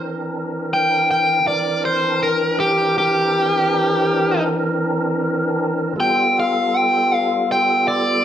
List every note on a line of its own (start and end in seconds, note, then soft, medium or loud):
0.00 1.40 E3 medium
0.00 1.39 C4 medium
0.00 1.40 D4 medium
0.00 1.40 A#4 medium
0.74 1.07 G5 medium
1.11 1.45 G5 medium
1.44 5.93 E3 medium
1.44 5.93 C4 medium
1.44 5.93 D4 medium
1.44 5.94 A#4 medium
1.44 1.82 D5 medium
1.85 2.20 C5 medium
2.23 2.57 A#4 medium
2.60 2.95 G4 medium
2.98 4.43 G4 medium
5.96 8.25 G3 medium
5.96 8.25 B3 medium
5.96 8.25 F4 medium
5.96 8.25 A4 medium
6.00 6.35 G5 medium
6.40 6.77 F5 medium
6.77 7.14 G5 medium
7.14 7.49 F5 medium
7.52 7.87 G5 medium
7.88 8.25 D5 medium